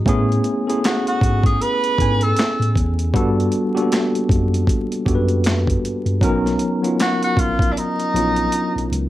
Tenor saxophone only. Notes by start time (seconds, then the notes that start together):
0.85 F#4
1.08 F#4
1.46 G#4
1.62 B4
2.23 A4
7.02 F#4
7.24 F#4
7.39 F4
7.72 D4
7.79 D#4